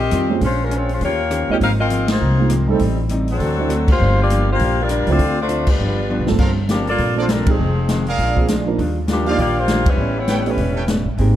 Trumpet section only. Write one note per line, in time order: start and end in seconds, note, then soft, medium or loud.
6.39 6.51 A4 medium
6.39 6.51 A#4 medium
6.39 6.51 C5 medium
6.39 6.51 F5 medium
7.17 7.25 A4 medium
7.17 7.25 A#4 medium
7.17 7.25 C5 medium
7.17 7.25 D5 medium
8.08 8.47 G#4 medium
8.08 8.46 A#4 medium
8.08 8.47 D5 medium
8.08 8.47 F5 loud
9.27 9.66 G4 medium
9.27 9.66 D5 medium
9.27 9.66 D#5 medium
9.27 9.66 F5 loud
10.28 10.40 A4 medium
10.28 10.40 B4 medium
10.28 10.40 C#5 medium
10.28 10.40 G5 medium
10.76 10.84 A4 medium
10.76 10.84 B4 medium
10.76 10.84 C#5 medium
10.76 10.84 G5 medium